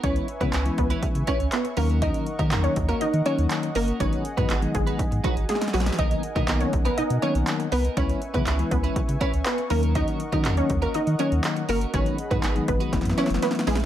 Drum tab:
HH |x-----x-----x-----x-----x-----x-----x-----x-----x-----x-----x-----x-----x-----x-----o-----x-----|x-----x-----x-----x-----x-----x-----x-----x-----x-----x-----x-----x-----x-----x-----o-----x-----|x-----x-----x-----x-----x-----x-----x-----x-----x-----x-----x-----x-----x-----x-----o-----x-----|x-----x-----x-----x-----x-----x-----x-----x-----x-----x-----x-----x-----x-----x-----o-----x-----|
CP |------------------------x-----------------------------------------------x-----------------------|------------------------x-----------------------------------------------x-----------------------|------------------------x-----------------------------------------------------------------------|------------------------x-----------------------------------------------x-----------------------|
SD |------------------------------------------------------------------------------------------------|------------------------------------------------------------------------------------------------|------------------------------------------------------------------------o--o--o--o--o--o--o--o--|------------------------------------------------------------------------------------------------|
BD |o-----------------o-----------------o-----------o-----------o-----------------------------------|o-----------------o-----------------o-----------------------------------------------------------|o-----------------o-----------------o-----------o-----------o-----------------------------------|o-----------------o-----------------o-----------------------------------------------------------|

HH |x-----x-----x-----x-----x-----x-----x-----x-----x-----x-----x-----x-----x-----x-----o-----x-----|x-----x-----x-----x-----x-----x-----x-----x-----x-----x-----x-----x-----x-----x-----o-----x-----|x-----x-----x-----x-----x-----x-----x-----x-----x-----x-----x-----x-----x-----x-----o-----x-----|
CP |------------------------x-----------------------------------------------x-----------------------|------------------------x-----------------------------------------------x-----------------------|------------------------x-----------------------------------------------------------------------|
SD |------------------------------------------------------------------------------------------------|------------------------------------------------------------------------------------------------|------------------------------------------------o---o---o---o---o---o---o---o---o---o---o-------|
BD |o-----------------o-----------------o-----------o-----------o-----------------------------------|o-----------------o-----------------o-----------------------------------------------------------|o-----------------o-----------------o-----------o-----------------------------------------------|